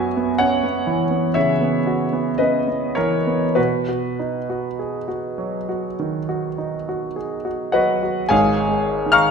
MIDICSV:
0, 0, Header, 1, 2, 480
1, 0, Start_track
1, 0, Key_signature, 5, "major"
1, 0, Tempo, 947867
1, 692, Tempo, 1039861
1, 1172, Tempo, 1188119
1, 1643, Time_signature, 4, 2, 24, 8
1, 3092, Tempo, 1149425
1, 3572, Tempo, 1088929
1, 4013, End_track
2, 0, Start_track
2, 0, Title_t, "Grand piano"
2, 0, Program_c, 0, 0
2, 0, Control_c, 0, 64, 127
2, 0, Note_on_c, 0, 42, 55
2, 0, Note_on_c, 0, 59, 44
2, 0, Note_on_c, 0, 66, 47
2, 0, Note_on_c, 0, 76, 66
2, 0, Note_on_c, 0, 80, 83
2, 84, Note_off_c, 0, 59, 0
2, 84, Note_on_c, 0, 59, 48
2, 158, Note_off_c, 0, 66, 0
2, 180, Note_off_c, 0, 76, 0
2, 195, Note_on_c, 0, 78, 83
2, 197, Note_off_c, 0, 80, 0
2, 199, Note_on_c, 0, 73, 63
2, 206, Note_on_c, 0, 61, 37
2, 276, Note_off_c, 0, 59, 0
2, 321, Note_on_c, 0, 59, 41
2, 325, Note_off_c, 0, 61, 0
2, 440, Note_on_c, 0, 52, 44
2, 516, Note_off_c, 0, 59, 0
2, 559, Note_on_c, 0, 59, 39
2, 639, Note_off_c, 0, 52, 0
2, 667, Note_off_c, 0, 73, 0
2, 669, Note_off_c, 0, 42, 0
2, 680, Note_on_c, 0, 76, 76
2, 683, Note_on_c, 0, 73, 61
2, 685, Note_off_c, 0, 78, 0
2, 691, Note_on_c, 0, 49, 40
2, 757, Note_off_c, 0, 59, 0
2, 806, Note_on_c, 0, 59, 44
2, 877, Note_off_c, 0, 49, 0
2, 923, Note_on_c, 0, 66, 42
2, 997, Note_off_c, 0, 59, 0
2, 1043, Note_on_c, 0, 59, 43
2, 1120, Note_off_c, 0, 66, 0
2, 1150, Note_off_c, 0, 73, 0
2, 1159, Note_on_c, 0, 75, 69
2, 1164, Note_on_c, 0, 71, 53
2, 1166, Note_off_c, 0, 76, 0
2, 1169, Note_on_c, 0, 61, 33
2, 1237, Note_off_c, 0, 59, 0
2, 1280, Note_on_c, 0, 59, 41
2, 1283, Note_off_c, 0, 61, 0
2, 1380, Note_off_c, 0, 71, 0
2, 1392, Note_on_c, 0, 73, 70
2, 1394, Note_off_c, 0, 75, 0
2, 1398, Note_on_c, 0, 70, 56
2, 1403, Note_on_c, 0, 52, 38
2, 1469, Note_off_c, 0, 59, 0
2, 1520, Note_on_c, 0, 59, 41
2, 1594, Note_off_c, 0, 52, 0
2, 1626, Note_off_c, 0, 70, 0
2, 1634, Note_on_c, 0, 71, 59
2, 1638, Note_on_c, 0, 66, 51
2, 1639, Note_off_c, 0, 73, 0
2, 1643, Note_off_c, 0, 59, 0
2, 1643, Note_on_c, 0, 47, 47
2, 1651, Control_c, 0, 64, 0
2, 1745, Control_c, 0, 64, 127
2, 1763, Note_off_c, 0, 66, 0
2, 1769, Note_on_c, 0, 66, 37
2, 1894, Note_on_c, 0, 63, 39
2, 1963, Note_off_c, 0, 66, 0
2, 2016, Note_on_c, 0, 66, 39
2, 2084, Note_off_c, 0, 63, 0
2, 2136, Note_on_c, 0, 68, 29
2, 2204, Note_off_c, 0, 66, 0
2, 2252, Note_off_c, 0, 68, 0
2, 2252, Note_on_c, 0, 66, 38
2, 2373, Note_on_c, 0, 54, 36
2, 2445, Note_off_c, 0, 66, 0
2, 2498, Note_on_c, 0, 66, 36
2, 2567, Note_off_c, 0, 54, 0
2, 2599, Note_off_c, 0, 47, 0
2, 2621, Note_on_c, 0, 51, 37
2, 2691, Note_off_c, 0, 66, 0
2, 2740, Note_on_c, 0, 66, 38
2, 2812, Note_off_c, 0, 51, 0
2, 2858, Note_on_c, 0, 63, 38
2, 2930, Note_off_c, 0, 66, 0
2, 2982, Note_on_c, 0, 66, 36
2, 3047, Note_off_c, 0, 63, 0
2, 3088, Note_off_c, 0, 71, 0
2, 3093, Note_on_c, 0, 68, 31
2, 3168, Note_off_c, 0, 66, 0
2, 3213, Note_on_c, 0, 66, 37
2, 3214, Note_off_c, 0, 68, 0
2, 3327, Note_off_c, 0, 66, 0
2, 3328, Note_on_c, 0, 78, 70
2, 3332, Note_on_c, 0, 71, 53
2, 3334, Note_on_c, 0, 66, 52
2, 3335, Note_on_c, 0, 75, 52
2, 3340, Note_on_c, 0, 54, 39
2, 3449, Note_off_c, 0, 66, 0
2, 3456, Note_on_c, 0, 66, 37
2, 3529, Note_off_c, 0, 54, 0
2, 3554, Note_off_c, 0, 71, 0
2, 3555, Note_off_c, 0, 75, 0
2, 3563, Note_on_c, 0, 80, 84
2, 3567, Note_on_c, 0, 73, 64
2, 3568, Note_off_c, 0, 78, 0
2, 3568, Note_on_c, 0, 68, 61
2, 3569, Note_on_c, 0, 77, 61
2, 3570, Note_on_c, 0, 32, 52
2, 3572, Note_off_c, 0, 66, 0
2, 3572, Note_on_c, 0, 44, 53
2, 3582, Control_c, 0, 64, 0
2, 3655, Control_c, 0, 64, 127
2, 3738, Note_on_c, 0, 56, 38
2, 3904, Note_on_c, 0, 51, 42
2, 3917, Note_off_c, 0, 73, 0
2, 3918, Note_off_c, 0, 68, 0
2, 3918, Note_off_c, 0, 77, 0
2, 3929, Note_on_c, 0, 89, 97
2, 3932, Note_off_c, 0, 80, 0
2, 3933, Note_on_c, 0, 77, 69
2, 3933, Note_on_c, 0, 82, 72
2, 3935, Note_on_c, 0, 85, 70
2, 3993, Note_off_c, 0, 56, 0
2, 4013, Note_off_c, 0, 32, 0
2, 4013, Note_off_c, 0, 44, 0
2, 4013, Note_off_c, 0, 51, 0
2, 4013, Note_off_c, 0, 77, 0
2, 4013, Note_off_c, 0, 82, 0
2, 4013, Note_off_c, 0, 85, 0
2, 4013, Note_off_c, 0, 89, 0
2, 4013, End_track
0, 0, End_of_file